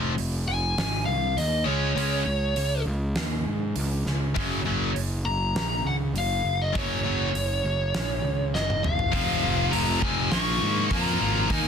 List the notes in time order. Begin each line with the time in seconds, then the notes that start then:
Already playing: F1 F2 C3 F3
0.18 F1, open hi-hat
0.48 F1 G#5
0.77 G#1, snare, open hi-hat
1.05 C2 F5
1.37 D#2 D#5, open hi-hat
1.64 C#2 C#3 G#3 C#4 C#5
1.96 C#2 C#3 G#3 C#4, open hi-hat
2.26 C#2
2.56 C#2, open hi-hat
2.86 C#2
3.16 D#2, snare, open hi-hat
3.46 G#2
3.76 C#2, open hi-hat
4.06 C#2, snare
4.35 F#1 F#2 C#3 F#3, kick, open hi-hat
4.65 F#1 F#2 C#3 F#3
4.95 F#1, open hi-hat
5.25 F#1 A#5
5.55 A#1, snare, open hi-hat
5.85 C#2 F#5
6.14 F#1, open hi-hat
6.18 F5
6.45 F#1
6.62 D#5
6.73 F#1 F#2 C#3 F#3 C#5, kick, open hi-hat
7.04 F#1 F#2 C#3 F#3
7.34 F#1, open hi-hat
7.64 F#1
7.94 A#1, snare, open hi-hat
8.24 C#2
8.54 F#1 D#5, snare
8.70 high tom
8.83 F#1 F5, mid tom
8.99 floor tom
9.12 F1 F2 C3 F3, kick, open hi-hat
9.44 F1
9.71 F1 F2 C3 F3 A#5, open hi-hat
10.01 F1 F2 C3 F3 G#5, kick
10.31 A#1 A#2 F3 A#3 C#6, snare, open hi-hat
10.62 G#2
10.90 F2 A#2 F3 A#3 A#5, kick, open hi-hat
11.06 snare
11.19 G#1 A#2 F3 A#3
11.48 D#2 D#3 A#3 D#4 G#5, kick, open hi-hat